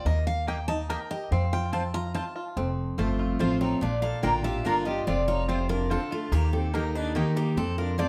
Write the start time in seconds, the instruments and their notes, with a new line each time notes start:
0.05 upright bass D#2, five-string banjo A#3, steel-string acoustic guitar D#5
0.27 steel-string acoustic guitar F5
0.47 mandolin A#3 G4 D#5 G5, five-string banjo A#3, steel-string acoustic guitar G5
0.68 five-string banjo D#4, steel-string acoustic guitar A5
0.89 mandolin A#3 G4 D#5 G5, five-string banjo A#4, steel-string acoustic guitar G5
1.11 five-string banjo G4, steel-string acoustic guitar D#5
1.31 upright bass F2, five-string banjo C4, steel-string acoustic guitar F5
1.53 five-string banjo F4, steel-string acoustic guitar G5
1.72 mandolin C4 F4 C5 A5, five-string banjo C4, steel-string acoustic guitar A5
1.94 five-string banjo F4, steel-string acoustic guitar A#5
2.15 mandolin C4 F4 C5 A5, five-string banjo F4, steel-string acoustic guitar A5
2.36 five-string banjo F4
2.57 upright bass F1, steel-string acoustic guitar F2, five-string banjo C4
2.98 upright bass G1, steel-string acoustic guitar F3 A3 C4 F4, mandolin C4 F4 C5 A5, five-string banjo F4
3.19 five-string banjo F4
3.39 upright bass A1, steel-string acoustic guitar F3 A3 C4 F4 C5, mandolin C4 F4 C5 A5, five-string banjo F4, fiddle F4
3.61 five-string banjo C4, fiddle D#4, steel-string acoustic guitar C#5
3.81 upright bass A#1, steel-string acoustic guitar A#2 D5, five-string banjo D4, fiddle F4
4.02 five-string banjo A#3, fiddle A4, steel-string acoustic guitar F5
4.23 upright bass A1, steel-string acoustic guitar D3 A#3 D4 F4 G5, mandolin A#3 F4 D5 A#5, five-string banjo F4, fiddle A#4
4.44 five-string banjo A#3, steel-string acoustic guitar D4 F4 E5, fiddle G4
4.65 upright bass G1, steel-string acoustic guitar D3 A#3 D4 F4 F5, mandolin A#3 F4 D5 A#5, five-string banjo D4, fiddle A#4
4.85 steel-string acoustic guitar D4 F4 D#5, five-string banjo F4, fiddle G4
5.07 upright bass F1, steel-string acoustic guitar F2 D5, five-string banjo C4, fiddle F4
5.28 fiddle D#4, five-string banjo F4, steel-string acoustic guitar C#5
5.48 steel-string acoustic guitar C3 C5, mandolin C4 F4 C5 A5, five-string banjo C4, fiddle F4
5.69 fiddle D4, five-string banjo F4, steel-string acoustic guitar A#4
5.90 steel-string acoustic guitar D3 A4, mandolin C4 F4 C5 A5, fiddle C4, five-string banjo F4
6.11 fiddle A3, five-string banjo F4, steel-string acoustic guitar F4
6.32 upright bass D#2, steel-string acoustic guitar D#3 G4, five-string banjo A#3, fiddle A#3
6.53 fiddle C4, five-string banjo G4, steel-string acoustic guitar A4
6.73 steel-string acoustic guitar D#3 A#3 D#4 G4 A#4, mandolin A#3 G4 D#5 G5, fiddle D#4, five-string banjo A#4
6.95 fiddle D4, five-string banjo D#4, steel-string acoustic guitar B4
7.15 steel-string acoustic guitar D#3 A#3 D#4 G4 A#4, mandolin A#3 G4 D#5 G5, fiddle D#4, five-string banjo G4
7.36 five-string banjo A#3, fiddle A#3, steel-string acoustic guitar G4
7.57 upright bass F2, steel-string acoustic guitar F2 A4, five-string banjo C4, fiddle C4
7.78 fiddle D4, five-string banjo F4, steel-string acoustic guitar A#4
7.98 steel-string acoustic guitar F3 A3 C4 F4 D5, mandolin C4 F4 C5 A5, five-string banjo F4, fiddle F4